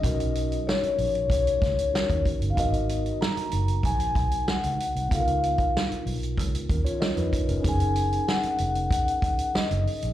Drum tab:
HH |xxxx-xoxxxxx-xxx|xxxx-xxxxxxx-xxx|xxxx-xoxxxxx-xxx|xxxx-xxxxxxx-xox|
SD |----o-----o-o---|----o-------o---|----o-------o---|----o-------o---|
BD |o-------o-o--oo-|o-------o-o-----|o--o----o-o---o-|o-------o-o-----|